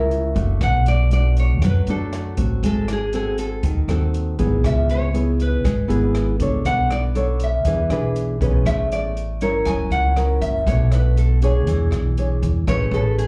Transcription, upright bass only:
0.00 0.33 C#2 medium
0.36 0.62 F#1 medium
0.61 1.62 B1 medium
1.62 1.85 F#2 medium
1.87 2.34 F#2 medium
2.37 2.63 A1 medium
2.63 3.65 G#1 medium
3.63 3.87 D#2 medium
3.88 4.35 D#2 medium
4.39 4.64 G#1 medium
4.64 5.64 C#2 medium
5.64 5.88 G#1 medium
5.90 6.36 G#1 medium
6.40 6.65 C#2 medium
6.65 7.65 B1 medium
7.65 7.88 E2 medium
7.90 8.37 B1 medium
8.41 8.66 B1 medium
8.66 9.66 A1 medium
9.66 9.90 F#1 medium
9.90 10.38 C#2 medium
10.41 10.68 F#1 medium
10.66 11.67 B1 medium
11.67 11.90 E2 medium
11.91 12.38 B1 medium
12.43 12.66 E2 medium
12.67 12.91 A1 loud
12.91 13.27 A1 loud

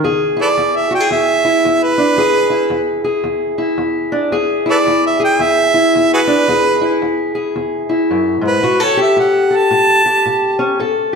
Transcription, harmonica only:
0.41 0.48 A4 medium
0.41 0.48 B4 medium
0.41 0.77 D5 medium
0.76 0.92 E5 medium
0.95 1.11 G5 medium
1.12 1.85 E5 loud
1.83 2.87 B4 loud
4.70 4.77 A4 medium
4.70 4.78 B4 medium
4.70 5.05 D5 medium
5.06 5.23 E5 medium
5.24 5.43 G5 loud
5.42 6.11 E5 loud
6.14 6.20 F#4 medium
6.14 6.21 G#4 medium
6.14 7.18 B4 loud
8.47 8.85 B4 medium
8.84 9.00 C#5 medium
9.02 9.18 E5 medium
9.20 9.58 F#5 medium
9.56 10.60 A5 loud

